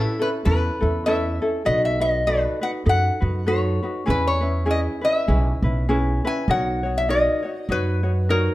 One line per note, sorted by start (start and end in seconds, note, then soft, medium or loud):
0.00 0.21 C#4 medium
0.00 0.20 E4 medium
0.00 0.22 E4 medium
0.00 0.18 A4 medium
0.00 0.19 B4 medium
0.19 0.44 C#4 soft
0.19 0.45 E4 soft
0.19 0.44 A4 soft
0.19 0.28 B4 medium
0.45 0.69 E2 medium
0.45 0.81 C#4 medium
0.45 0.80 E4 medium
0.45 0.79 A4 medium
0.45 0.80 B4 medium
0.45 1.06 B4 medium
0.81 1.38 E2 medium
0.81 1.06 C#4 soft
0.81 1.06 E4 soft
0.81 1.06 A4 medium
1.06 1.42 C#4 medium
1.06 1.41 E4 medium
1.06 1.40 A4 medium
1.06 1.41 B4 medium
1.06 1.63 E5 medium
1.42 1.65 C#4 soft
1.42 1.65 E4 soft
1.42 1.64 A4 medium
1.65 2.45 B1 medium
1.65 2.01 D#4 medium
1.65 2.00 F#4 medium
1.65 2.00 A4 medium
1.65 1.99 B4 medium
1.65 1.84 D#5 medium
1.85 2.01 E5 medium
2.00 2.26 D#4 soft
2.00 2.26 F#4 soft
2.00 2.26 B4 medium
2.00 2.28 D#5 medium
2.27 2.62 D#4 medium
2.27 2.61 F#4 medium
2.27 2.61 A4 medium
2.27 2.63 B4 medium
2.27 2.60 B4 medium
2.61 2.85 D#4 soft
2.61 2.85 F#4 soft
2.61 2.85 B4 medium
2.61 2.70 F#5 medium
2.86 3.09 F#2 medium
2.86 3.22 D#4 medium
2.86 3.20 F#4 medium
2.86 3.20 A4 medium
2.86 3.19 B4 medium
2.86 3.50 F#5 medium
3.21 3.78 F#2 medium
3.21 3.47 D#4 soft
3.21 3.46 F#4 soft
3.21 3.46 B4 soft
3.47 3.83 D#4 medium
3.47 3.82 F#4 medium
3.47 3.82 A4 medium
3.47 3.81 B4 medium
3.47 4.10 C#5 medium
3.83 4.06 D#4 soft
3.83 4.06 F#4 soft
3.83 4.06 B4 soft
4.06 4.86 E2 medium
4.06 4.42 C#4 medium
4.06 4.41 E4 medium
4.06 4.42 G#4 medium
4.06 4.39 B4 medium
4.10 4.27 B4 medium
4.27 4.70 C#5 medium
4.41 4.65 C#4 soft
4.41 4.66 E4 soft
4.41 4.65 B4 soft
4.66 5.02 C#4 medium
4.66 5.02 E4 medium
4.66 5.02 G#4 medium
4.66 5.00 B4 medium
4.71 4.80 D#5 medium
5.01 5.27 C#4 soft
5.01 5.28 E4 soft
5.01 5.28 B4 soft
5.01 6.20 E5 medium
5.28 5.51 B1 medium
5.28 5.63 C#4 medium
5.28 5.63 E4 medium
5.28 5.63 G#4 medium
5.28 5.62 B4 medium
5.62 6.18 B1 medium
5.62 5.88 C#4 soft
5.62 5.88 E4 soft
5.62 5.89 B4 soft
5.89 6.24 C#4 medium
5.89 6.24 E4 medium
5.89 6.24 G#4 medium
5.89 6.23 B4 medium
6.25 6.49 C#4 soft
6.25 6.50 E4 soft
6.25 6.50 B4 medium
6.25 6.52 G#5 medium
6.48 7.27 B1 medium
6.48 6.84 D#4 medium
6.48 6.84 F#4 medium
6.48 6.84 A#4 medium
6.48 6.82 C#5 medium
6.48 6.99 F#5 medium
6.83 7.08 D#4 soft
6.83 7.09 F#4 medium
6.83 7.09 C#5 soft
6.98 7.10 E5 medium
7.09 7.44 D#4 medium
7.09 7.43 F#4 medium
7.09 7.44 A#4 medium
7.09 7.41 C#5 medium
7.09 7.72 D#5 medium
7.43 7.68 D#4 soft
7.43 7.69 F#4 soft
7.43 7.69 C#5 medium
7.69 8.47 F#2 medium
7.69 8.04 D#4 medium
7.69 8.02 F#4 medium
7.69 8.27 B4 medium
7.69 8.02 C#5 medium
8.03 8.29 D#4 soft
8.03 8.29 F#4 soft
8.03 8.29 C#5 soft
8.29 8.54 D#4 medium
8.29 8.54 F#4 medium
8.29 8.54 A#4 medium
8.29 8.54 C#5 medium